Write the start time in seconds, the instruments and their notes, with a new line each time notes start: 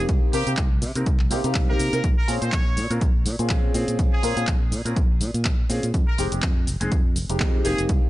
Already playing: grand piano A#3 C4 D#4 G4
0.09 fingered electric bass C2, kick, closed hi-hat, cabasa
0.33 fingered electric bass C3, grand piano A#3 C4 D#4 A#4, trumpet section G4, open hi-hat, cabasa
0.47 fingered electric bass C3, grand piano A#3 C4 D#4 G4, closed hi-hat, cabasa
0.57 fingered electric bass C2, kick, clap, closed hi-hat, cabasa
0.82 fingered electric bass C3, open hi-hat, cabasa
0.95 fingered electric bass C3, grand piano A#3 C4 D#4 A#4, closed hi-hat, cabasa
1.06 fingered electric bass C2, kick, closed hi-hat, cabasa
1.19 clap
1.30 fingered electric bass C3, grand piano A#3 C4 D#4 G4, open hi-hat, cabasa
1.44 fingered electric bass C3, grand piano A#3 C4 D#4 G4, closed hi-hat, cabasa
1.55 fingered electric bass C2, kick, clap, cabasa
1.68 grand piano A#3 C4 D#4 G4, trumpet section A#4
1.79 fingered electric bass C3, open hi-hat, cabasa
1.93 fingered electric bass C3, grand piano A#3 C4 D#4 A#4, closed hi-hat, cabasa
2.04 fingered electric bass A#1, kick, closed hi-hat, cabasa
2.18 trumpet section A#4
2.28 fingered electric bass A#2, grand piano C4 C#4 F4 G#4, open hi-hat, cabasa
2.41 fingered electric bass A#2, grand piano C4 C#4 F4 G#4, trumpet section C#5, closed hi-hat, cabasa
2.52 fingered electric bass A#1, kick, clap, closed hi-hat, cabasa
2.77 fingered electric bass A#2, open hi-hat, cabasa
2.90 fingered electric bass A#2, grand piano C4 C#4 F4 A#4, closed hi-hat, cabasa
3.01 fingered electric bass A#1, kick, closed hi-hat, cabasa
3.26 fingered electric bass A#2, open hi-hat, cabasa
3.39 fingered electric bass A#2, grand piano C4 C#4 F4 G#4, closed hi-hat, cabasa
3.49 fingered electric bass A#1, grand piano C4 C#4 F4 G#4, kick, clap, cabasa
3.74 fingered electric bass A#2, grand piano C4 C#4 F4 G#4, open hi-hat, cabasa
3.88 fingered electric bass A#2, closed hi-hat, cabasa
3.99 fingered electric bass A#1, kick, closed hi-hat, cabasa
4.13 trumpet section G#4
4.23 fingered electric bass A#2, grand piano C4 C#4 F4 A#4, open hi-hat, cabasa
4.36 fingered electric bass A#2, grand piano C4 C#4 F4 G#4, closed hi-hat, cabasa
4.47 fingered electric bass A#1, kick, clap, closed hi-hat, cabasa
4.72 fingered electric bass A#2, open hi-hat, cabasa
4.85 fingered electric bass A#2, grand piano C4 C#4 F4 A#4, closed hi-hat, cabasa
4.96 fingered electric bass A#1, kick, closed hi-hat, cabasa
5.21 fingered electric bass A#2, open hi-hat, cabasa
5.34 fingered electric bass A#2, closed hi-hat, cabasa
5.45 fingered electric bass A#1, kick, clap, cabasa
5.69 fingered electric bass A#2, grand piano C4 C#4 F4 G#4, open hi-hat, cabasa
5.83 fingered electric bass A#2, closed hi-hat, cabasa
5.94 fingered electric bass F2, kick, closed hi-hat, cabasa
6.08 trumpet section A#4
6.18 fingered electric bass F1, grand piano G#3 C4 D#4 G4, open hi-hat, cabasa
6.32 fingered electric bass F1, grand piano G#3 C4 D#4 G4, closed hi-hat, cabasa
6.42 fingered electric bass F2, kick, clap, closed hi-hat, cabasa
6.67 fingered electric bass F1, open hi-hat, cabasa
6.80 fingered electric bass F1, grand piano G#3 C4 D#4 G#4, closed hi-hat, cabasa
6.92 fingered electric bass F2, kick, closed hi-hat, cabasa
7.16 fingered electric bass F1, open hi-hat, cabasa
7.29 fingered electric bass F1, grand piano G#3 C4 D#4 G4, closed hi-hat, cabasa
7.40 fingered electric bass F2, grand piano G#3 C4 D#4 G4, kick, clap, cabasa
7.64 fingered electric bass F1, grand piano A#3 C4 D#4 G4, trumpet section G#4, open hi-hat, cabasa
7.78 fingered electric bass F1, closed hi-hat, cabasa
7.89 fingered electric bass C2, kick, closed hi-hat, cabasa